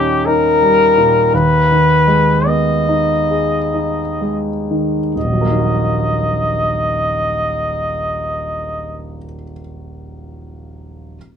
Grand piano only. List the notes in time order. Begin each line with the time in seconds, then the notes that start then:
Already playing: D#2 A#2 G3 C#4 D#4
0.27 D#4
0.62 G3
0.98 A#2
1.34 D#2
1.71 D#3
2.07 G#3
2.47 B3
2.89 D#4
3.31 G#4
3.74 D#4
4.21 G#3
4.71 D#3
5.16 D#1
5.24 A#1
5.33 F#3
5.41 A#3
5.50 D#4
5.58 F#4